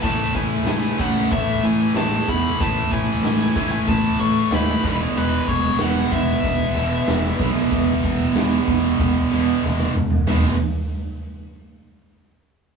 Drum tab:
CC |x---------------|--------------x-|----------------|----------------|
HH |--o-o-o-o-o-o-o-|o-o-o-o-o-o-o---|--o-o-o-o-o-o-o-|o-o-o-o-o-o-----|
SD |----o--o----o---|----o-------o---|----o-------o--o|----o--o-----o--|
T1 |----------------|----------------|----------------|------------o---|
T2 |----------------|----------------|----------------|--------------o-|
FT |----------------|----------------|----------------|---------------o|
BD |o-o---o-o-----o-|o-o---o-o-----o-|--o---o-o-----o-|o-o---o-o-------|

CC |----------------|
HH |o---------------|
SD |o---------------|
T1 |----------------|
T2 |----------------|
FT |o---------------|
BD |----------------|